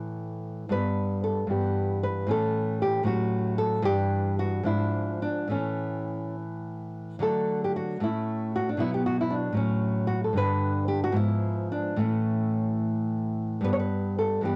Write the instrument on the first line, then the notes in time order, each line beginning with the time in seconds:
nylon-string guitar
Already playing: A2 E3 A3
0.69 G2 G3 B3 B4
1.24 A4
1.47 G2 E3 B3 G4
2.04 B4
2.27 A2 E3 C#4
2.31 A4
2.82 G4
3.03 A2 F#3 C#4 F#4
3.58 A4
3.82 G2 E3 D4 G4
4.39 F#4
4.63 G#2 F3 D4 E4
5.22 D4
5.48 A2 E3 A3 C#4
7.19 D3 F#3 A3 A4
7.64 G4
7.76 F#4
8.00 A2 A3 C#4 E4
8.56 F#4
8.69 D4
8.77 B2 F#3 B3 E4
8.94 G4
9.06 F#4
9.21 E4
9.30 D4
9.52 A2 F#3
9.57 C#4
10.07 F#4
10.24 A4
10.33 G2 D3 D4
10.37 B4
10.88 G4
11.04 F#4
11.12 G#2 F3 B3
11.16 E4
11.72 D4
11.97 A2 E3 A3 C#4
13.61 G2 G3 B3 B4
13.73 C#5
13.80 B4
14.19 A4
14.41 G2 E3 B3
14.45 G4